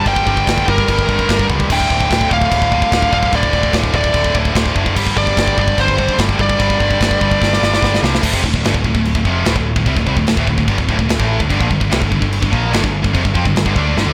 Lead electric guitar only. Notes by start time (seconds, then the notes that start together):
0.08 G5
0.70 A#4
1.73 G5
2.33 F5
3.14 F5
3.35 D5
3.96 D5
5.18 D5
5.59 D5
5.80 C5
6.41 D5